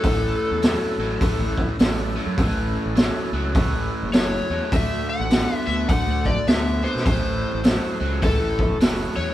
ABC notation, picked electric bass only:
X:1
M:4/4
L:1/16
Q:"Swing" 1/4=103
K:A
V:1 name="Picked electric bass" clef=bass
A,,,2 z E,,2 z A,,,2 z A,,,2 z A,,,3 F,, | A,,,3 A,,,2 z C,,3 A,,, z F,,,3 E,, z | D,,2 z A,,,2 z D,,2 z D,,2 z D,,3 B,, | A,,,3 A,,,2 z C,,3 A,,, z F,,,3 E,, z |]